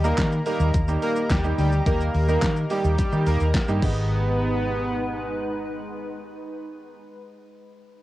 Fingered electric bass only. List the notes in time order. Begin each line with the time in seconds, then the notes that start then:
Already playing: D#2
0.18 D#3
0.60 D#2
0.74 D#2
1.30 D#2
1.58 D2
1.86 D#2
2.14 D#2
2.42 D#3
2.84 D#2
3.12 D#3
3.26 D#2
3.40 D#2
3.54 muted fingered electric bass stroke
3.69 G2
3.83 G#1